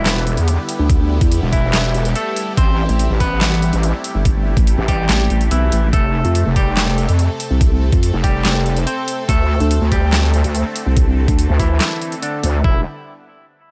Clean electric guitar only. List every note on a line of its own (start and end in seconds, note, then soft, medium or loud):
0.00 0.39 E3 medium
0.00 0.39 E4 medium
1.52 2.07 E3 medium
1.52 2.07 E4 medium
2.15 2.52 A3 medium
2.15 2.52 A4 medium
2.57 3.12 C4 medium
2.57 3.12 C5 medium
3.20 3.75 B3 medium
3.20 3.75 B4 medium
4.88 5.43 G3 medium
4.88 5.43 G4 medium
5.51 5.87 E3 medium
5.51 5.87 E4 medium
5.93 6.48 A3 medium
5.93 6.48 A4 medium
6.56 7.11 G3 medium
6.56 7.11 G4 medium
8.24 8.78 G3 medium
8.24 8.78 G4 medium
8.87 9.23 C4 medium
8.87 9.23 C5 medium
9.29 9.83 A3 medium
9.29 9.83 A4 medium
9.92 10.46 G3 medium
9.92 10.46 G4 medium
11.59 12.14 E3 medium
11.59 12.14 E4 medium
12.22 12.59 D3 medium
12.22 12.59 D4 medium
12.64 12.80 E4 medium